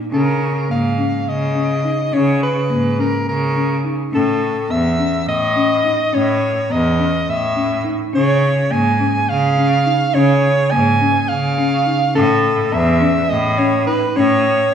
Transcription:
0.11 cello C#3, marimba C#4, soprano saxophone A#4
0.69 cello G#2, marimba A#3, soprano saxophone F5
0.98 marimba C#4
1.26 cello C#3, soprano saxophone D#5
1.55 marimba C#4
1.84 marimba D#4
2.12 cello C#3, marimba C#4, soprano saxophone C#5
2.43 soprano saxophone B4
2.70 cello G#2, marimba A#3
2.99 marimba C#4, soprano saxophone A#4
3.27 cello C#3, soprano saxophone A#4
3.56 marimba C#4
3.84 marimba D#4
4.13 cello A2, marimba C#4, soprano saxophone A4
4.70 cello E2, marimba B3, soprano saxophone E5
4.99 marimba C#4
5.27 cello A2, soprano saxophone D#5
5.56 marimba C#4
5.84 marimba D#4
6.13 cello A2, marimba C#4, soprano saxophone C#5
6.70 cello E2, marimba B3, soprano saxophone D#5
6.99 marimba C#4
7.28 cello A2, soprano saxophone E5
7.56 marimba C#4
7.85 marimba D#4
8.13 cello C#3, marimba C#4, soprano saxophone C#5
8.71 cello G#2, marimba A#3, soprano saxophone G#5
9.00 marimba C#4
9.29 cello C#3, soprano saxophone F5
9.57 marimba C#4
9.86 marimba D#4
10.14 cello C#3, marimba C#4, soprano saxophone C#5
10.71 cello G#2, marimba A#3, soprano saxophone G#5
11.01 marimba C#4
11.28 cello C#3, soprano saxophone F5
11.58 marimba C#4
11.86 marimba D#4
12.15 cello A2, marimba C#4, soprano saxophone A4
12.73 cello E2, marimba B3, soprano saxophone E5
13.01 marimba C#4
13.29 cello A2, soprano saxophone D#5
13.58 marimba C#4, soprano saxophone C#5
13.87 marimba D#4, soprano saxophone B4
14.16 cello A2, marimba C#4, soprano saxophone C#5

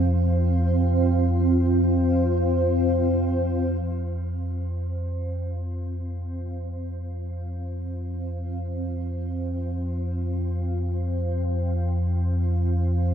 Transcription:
Already playing: synth drone F2 F3, ambient pad C4 F4 C5 F5
3.82 synth drone F2 F3

